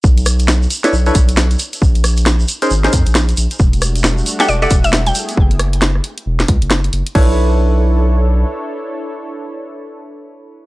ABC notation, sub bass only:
X:1
M:4/4
L:1/16
Q:"Swing 16ths" 1/4=135
K:Bm
V:1 name="Sub bass" clef=bass
B,,,6 z2 B,,, z B,,,4 z2 | ^A,,,6 z2 ^G,,, z ^E,, A,,,3 A,,, z | E,,,6 z2 E,,, z E,,,4 z2 | F,,,6 z2 E,,, z C,, F,,,3 F,,, z |
B,,,12 z4 | z16 |]